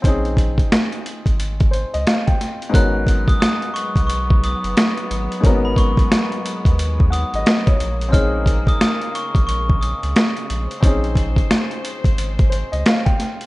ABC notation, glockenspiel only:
X:1
M:4/4
L:1/16
Q:"Swing 16ths" 1/4=89
K:A#phr
V:1 name="Glockenspiel"
z16 | f'3 d' d'2 c'2 c'2 d'3 z3 | z b c'8 d'6 | e'3 d' d'2 c'2 c'2 d'3 z3 |
z16 |]